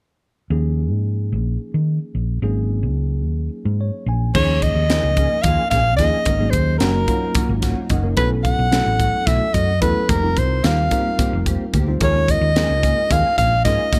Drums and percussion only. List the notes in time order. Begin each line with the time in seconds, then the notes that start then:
4.35 kick, crash
4.62 kick, closed hi-hat
4.90 snare, closed hi-hat
5.17 kick, closed hi-hat
5.44 kick, closed hi-hat
5.71 kick, snare, closed hi-hat
5.99 kick, snare, closed hi-hat
6.25 kick, closed hi-hat
6.53 kick, closed hi-hat
6.80 snare, closed hi-hat
7.08 kick, closed hi-hat
7.35 kick, closed hi-hat
7.62 kick, snare, closed hi-hat
7.90 kick, closed hi-hat
8.17 kick, closed hi-hat
8.45 kick, closed hi-hat
8.72 snare, closed hi-hat
9.00 kick, closed hi-hat
9.27 kick, snare, closed hi-hat
9.54 kick, closed hi-hat
9.82 kick, closed hi-hat
10.09 kick, closed hi-hat
10.37 kick, closed hi-hat
10.64 snare, closed hi-hat
10.91 kick, closed hi-hat
11.19 kick, closed hi-hat
11.46 kick, closed hi-hat
11.74 kick, closed hi-hat
12.01 kick, closed hi-hat
12.28 kick, closed hi-hat
12.56 snare, closed hi-hat
12.83 kick, closed hi-hat
13.11 kick, closed hi-hat
13.38 kick, closed hi-hat
13.65 kick, snare, closed hi-hat
13.93 kick, closed hi-hat